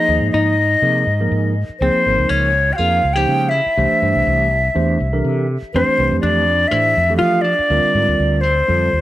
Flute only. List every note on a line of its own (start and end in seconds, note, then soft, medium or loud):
0.00 0.30 D#5 loud
0.31 1.51 D#5 medium
1.79 2.31 C5 medium
2.30 2.74 C#5 medium
2.73 3.15 F5 medium
2.73 2.78 G5 medium
3.13 3.50 G5 medium
3.49 5.47 E5 medium
5.74 6.19 C5 medium
6.21 6.69 D5 medium
6.68 7.16 E5 medium
7.17 7.43 F5 medium
7.41 8.42 D5 loud
8.41 9.01 C5 medium